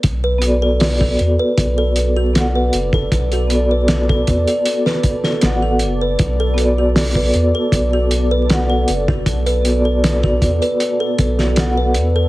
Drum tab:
HH |x-x-o-x-x-x-x-x-|xxx-x-xxx-x-x-x-|x-x-o-x-x-x-x-x-|xxx-x-xxx-x-x-x-|
SD |----o-------o---|----o----o-oo---|----o-------o---|----o------oo---|
BD |o----o--o------o|o----oo---o-----|o----o--o------o|o----oo---o-----|